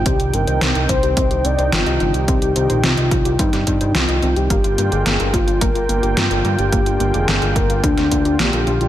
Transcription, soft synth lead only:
X:1
M:4/4
L:1/16
Q:1/4=108
K:Cm
V:1 name="Soft synth lead"
G2 B4 c4 d2 F3 G | G4 F4 E4 F3 G- | G3 A3 F2 B4 F3 G- | G3 A3 B2 D4 G4 |]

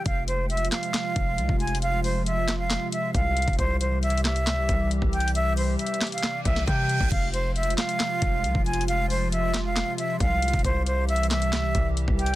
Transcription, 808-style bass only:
X:1
M:4/4
L:1/16
Q:1/4=136
K:Fm
V:1 name="808-style bass" clef=bass
F,,,6 z4 F,,,2 C,, F,,,3- | F,,,8- F,,, z3 C,,3 F,,, | C,,8 D,, C,, C,,3 C,,3- | C,,4 z6 C,,2 C,3 C,, |
F,,,6 z4 F,,,2 C,, F,,,3- | F,,,8- F,,, z3 C,,3 F,,, | C,,8 D,, C,, C,,3 C,,3 |]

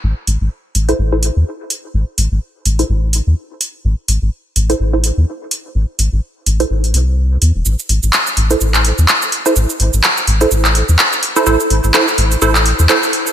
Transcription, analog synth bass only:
X:1
M:4/4
L:1/16
Q:"Swing 16ths" 1/4=126
K:Am
V:1 name="Analog synth bass" clef=bass
A,,, z A,,, A,,, z2 A,,, z A,,,3 E,, z4 | A,,, z A,,, A,,, z2 A,,, z A,,,3 E,, z4 | A,,, z A,,, A,,, z2 A,,, z A,,,3 E,, z4 | A,,, z A,,, A,,, z2 A,,, z A,,,2 C,,4 E,, E,,, |
A,,, z A,,, A,,, z2 A,,, z A,,,3 E,, z4 | A,,, z A,,, A,,, z2 A,,, z A,,,3 E,, z4 | A,,, z A,,, A,,, z2 A,,, z A,,,3 E,, z4 |]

